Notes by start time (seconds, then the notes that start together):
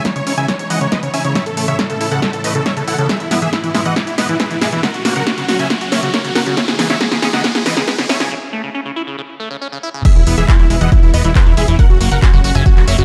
Already playing: C#3 E3 G#3 D#4 E4, riser
0.05 G#3 C#5, kick, snare, closed hi-hat
0.16 G#1 C#3 C#5, closed hi-hat
0.27 G#1 C#4 C#5, open hi-hat
0.38 G#1 C#3 E5 G#5, closed hi-hat
0.48 C#3 C#5, kick, snare, closed hi-hat
0.59 G#1 C#5, closed hi-hat
0.70 G#1 E3 D#5 F#5, open hi-hat
0.81 G#1 C#3 C#5, closed hi-hat
0.92 G#3 B4 D#5, kick, snare, closed hi-hat
1.03 G#1 C#3 C#5, closed hi-hat
1.14 G#1 C#4 E5 G#5, open hi-hat
1.24 G#1 C#3 C#5, closed hi-hat
1.35 A2 C#3 C#4 C#5 E5, kick, snare, closed hi-hat
1.46 A1 A4, closed hi-hat
1.57 A1 A3 A4, open hi-hat
1.68 A1 C#3 C#5 E5, closed hi-hat
1.79 C#4 A4, kick, snare, closed hi-hat
1.90 A1 C#3 A4, closed hi-hat
2.01 A1 E4 A4, open hi-hat
2.11 C#3 A4 F#5, closed hi-hat
2.22 A4, kick, snare, closed hi-hat
2.33 A1 A4, closed hi-hat
2.44 A1 A3 B4 D#5, open hi-hat
2.55 A1 C#3 A4, closed hi-hat
2.66 C#4 C#5 E5, kick, snare, closed hi-hat
2.77 A1 C#3 A4, closed hi-hat
2.88 A1 E4 A4 F#5, open hi-hat
2.98 A1 C#3 A4, closed hi-hat
3.09 G#2 B2 E3 B3 G#4 E5, kick, snare, closed hi-hat
3.20 E1 E4, closed hi-hat
3.31 B3 E4, snare, open hi-hat
3.42 E3 G#4 E5, closed hi-hat
3.53 E4, kick, snare, closed hi-hat
3.64 E3 E4, closed hi-hat
3.75 G#3 E4, snare, open hi-hat
3.85 E3 D#5 F#5, closed hi-hat
3.96 E4, kick, snare, closed hi-hat
4.07 E4, closed hi-hat
4.18 B3 B4 D#5, snare, open hi-hat
4.29 E3 E4, closed hi-hat
4.40 E4 G#4 B4, kick, snare, closed hi-hat
4.51 E3 E4, closed hi-hat
4.61 G#3 G#4 E5, snare, open hi-hat
4.72 E3 E4, closed hi-hat
4.83 A#2 C#3 F#3 C#4 F#4 A#4 F#5, kick, snare, closed hi-hat
4.94 F#4, closed hi-hat
5.05 A#3 F#4, snare, open hi-hat
5.16 F#1 C#3 A#4 F#5, closed hi-hat
5.27 C#4 F#4, kick, snare, closed hi-hat
5.38 C#3 F#4, closed hi-hat
5.48 F#4, snare, open hi-hat
5.59 C#3 E5 G#5, closed hi-hat
5.70 F#4, kick, snare, closed hi-hat
5.81 F#4, closed hi-hat
5.92 A#3 C#5 E5, snare, open hi-hat
6.03 C#3 F#4, closed hi-hat
6.14 C#4 A#4 C#5, kick, snare, closed hi-hat
6.25 C#3 F#4, closed hi-hat
6.35 G#1 F#4 A#4 F#5, snare, open hi-hat
6.46 C#3 F#4, closed hi-hat
6.57 C#3 E3 G#3 D#4 E4 C#5 E5, kick, snare, closed hi-hat
6.68 G#1 G#4, snare, closed hi-hat
6.79 E3 G#4, snare, open hi-hat
6.90 G#1 C#3 C#5 E5, snare, closed hi-hat
7.01 G#3 G#4, kick, snare, closed hi-hat
7.11 G#1 C#3 G#4, snare, closed hi-hat
7.22 C#4 G#4, snare, open hi-hat
7.33 G#1 C#3 D#5 F#5, snare, closed hi-hat
7.44 G#4, kick, snare, closed hi-hat
7.55 G#4, snare, closed hi-hat
7.66 G#1 E3 B4 D#5, snare, open hi-hat
7.77 C#3 G#4, snare, closed hi-hat
7.88 G#3 G#4 B4, kick, snare, closed hi-hat
7.98 G#1 C#3 G#4, snare, closed hi-hat
8.09 G#1 C#4 C#5 E5, snare, open hi-hat
8.20 C#3 G#4, snare, closed hi-hat
8.31 C#3
8.53 A3
8.64 C#3
8.75 C#4
8.85 C#3
8.96 E4
9.07 C#3
9.18 C#3
9.40 A3
9.51 C#3
9.62 C#4
9.72 C#3
9.83 E4
9.94 C#3
10.05 G#2 B2 E3 B3 E4 G#4 E5, kick, closed hi-hat, crash
10.16 E1 E4, closed hi-hat
10.27 E1 B3 E4, open hi-hat
10.38 E1 E3 G#4 E5, closed hi-hat
10.48 E4, kick, clap, closed hi-hat
10.59 E1 E3 E4, closed hi-hat
10.70 E1 G#3 E4, open hi-hat
10.81 E1 E3 D#5 F#5, closed hi-hat
10.92 E3 E4, kick, closed hi-hat
11.03 E1 E4, closed hi-hat
11.14 E1 B3 B4 D#5, open hi-hat
11.24 E1 E3 E4, closed hi-hat
11.35 E4 G#4 B4, kick, clap, closed hi-hat
11.46 E1 E3 E4, closed hi-hat
11.57 E1 G#3 G#4 E5, open hi-hat
11.68 E1 E3 E4, closed hi-hat
11.79 A#2 C#3 F#3 C#4 F#4 A#4 F#5, kick, closed hi-hat
11.90 F#1 F#4, closed hi-hat
12.01 F#1 A#3 F#4, open hi-hat
12.11 F#1 C#3 A#4 F#5, closed hi-hat
12.22 C#4 F#4, kick, clap, closed hi-hat
12.33 F#1 C#3 F#4, closed hi-hat
12.44 F#1 F#4, open hi-hat
12.55 F#1 C#3 E5 G#5, closed hi-hat
12.66 F#4, kick, closed hi-hat
12.77 F#1 F#4, clap, closed hi-hat
12.88 F#1 A#3 C#5 E5, open hi-hat
12.98 F#1 C#3 F#4, closed hi-hat